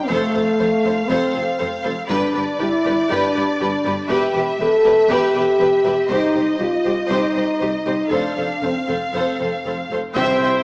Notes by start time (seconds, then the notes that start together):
0.08 F1 F2 A3 A4 C5 F5
0.35 F1 F2 A4 C5
0.59 F1 F2 A4 C5
0.84 F1 F2 A4 C5
1.08 F1 F2 C4 A4 C5
1.34 F1 F2 A4 C5
1.59 F1 F2 A4 C5
1.84 F1 F2 A4 C5
2.09 G1 G2 D4 G4 B4 D5, taiko
2.34 G1 G2 G4 B4
2.60 G1 G2 E4 G4 B4
2.85 G1 G2 G4 B4, taiko
3.10 G1 G2 D4 G4 B4
3.35 G1 G2 G4 B4
3.60 G1 G2 G4 B4
3.85 G1 G2 G4 B4
4.09 E1 E2 G4 B4 E5
4.34 E1 E2 G4 B4
4.59 E1 E2 G4 A4 B4
4.84 E1 E2 G4 B4
5.09 E1 E2 G4 B4
5.34 E1 E2 G4 B4
5.58 E1 E2 G4 B4
5.85 E1 E2 G4 B4
6.10 C2 D#4 G4 C5 D#5, taiko
6.35 C2 G4 C5
6.58 C2 F4 G4 C5
6.84 C2 G4 C5
7.09 C2 D#4 G4 C5
7.35 C2 G4 C5
7.59 C2 G4 C5
7.86 C2 G4 C5
8.10 F1 F2 D4 A4 C5 F5
8.37 F1 F2 A4 C5
8.62 F1 F2 C4 A4 C5
8.88 F1 F2 A4 C5
9.14 F1 F2 A4 C5
9.40 F1 F2 A4 C5
9.66 F1 F2 A4 C5
9.91 F1 F2 A4 C5
10.15 C2 C3 C4 E4 C5 E5 G5, taiko, impact
10.42 C2 C3 C5 E5 G5